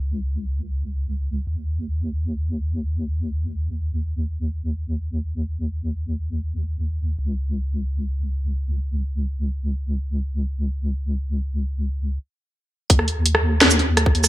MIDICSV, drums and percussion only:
0, 0, Header, 1, 2, 480
1, 0, Start_track
1, 0, Tempo, 500000
1, 13711, End_track
2, 0, Start_track
2, 0, Title_t, "Drums"
2, 12383, Note_on_c, 9, 36, 114
2, 12383, Note_on_c, 9, 42, 82
2, 12471, Note_on_c, 9, 37, 55
2, 12479, Note_off_c, 9, 36, 0
2, 12479, Note_off_c, 9, 42, 0
2, 12555, Note_on_c, 9, 42, 39
2, 12567, Note_off_c, 9, 37, 0
2, 12651, Note_off_c, 9, 42, 0
2, 12726, Note_on_c, 9, 42, 71
2, 12813, Note_on_c, 9, 37, 84
2, 12822, Note_off_c, 9, 42, 0
2, 12909, Note_off_c, 9, 37, 0
2, 13070, Note_on_c, 9, 37, 54
2, 13070, Note_on_c, 9, 38, 118
2, 13070, Note_on_c, 9, 42, 85
2, 13156, Note_on_c, 9, 82, 67
2, 13166, Note_off_c, 9, 37, 0
2, 13166, Note_off_c, 9, 38, 0
2, 13166, Note_off_c, 9, 42, 0
2, 13241, Note_on_c, 9, 42, 38
2, 13252, Note_off_c, 9, 82, 0
2, 13337, Note_off_c, 9, 42, 0
2, 13412, Note_on_c, 9, 37, 83
2, 13412, Note_on_c, 9, 42, 68
2, 13500, Note_on_c, 9, 36, 107
2, 13508, Note_off_c, 9, 37, 0
2, 13508, Note_off_c, 9, 42, 0
2, 13583, Note_on_c, 9, 42, 39
2, 13596, Note_off_c, 9, 36, 0
2, 13669, Note_on_c, 9, 37, 56
2, 13669, Note_on_c, 9, 82, 64
2, 13679, Note_off_c, 9, 42, 0
2, 13711, Note_off_c, 9, 37, 0
2, 13711, Note_off_c, 9, 82, 0
2, 13711, End_track
0, 0, End_of_file